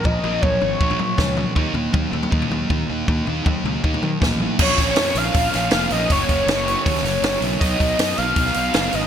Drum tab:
CC |----------------|----------------|----------------|x---------------|
HH |----------------|----------------|----------------|--o-o-o-o-o-o-o-|
SD |------------o---|----------------|------------o---|----o-----o-o---|
T2 |----o-----o---o-|----o--o--o-----|----o-----o---o-|----------------|
FT |o-o---o--o--o---|o-o---o--o--o---|o-o---o--o--o---|----------------|
BD |o---o---o---o---|o---o---o---o---|o---o---o---o---|o-o-----o-------|

CC |----------------|----------------|
HH |o-o-o-o-o-o-o-o-|o-o-o-o-o-o-o-o-|
SD |----o----oo-o---|----o----o--o---|
T2 |----------------|----------------|
FT |----------------|----------------|
BD |o-o-----o-------|o-o-----o-------|